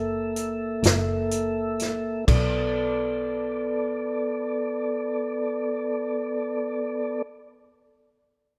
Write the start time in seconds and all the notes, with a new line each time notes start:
Already playing: F#1 A#3 A4 E5
0.36 closed hi-hat
0.83 F#1, snare, closed hi-hat
1.31 closed hi-hat
1.79 snare, closed hi-hat
2.27 B1 B3 A4 D5, kick, crash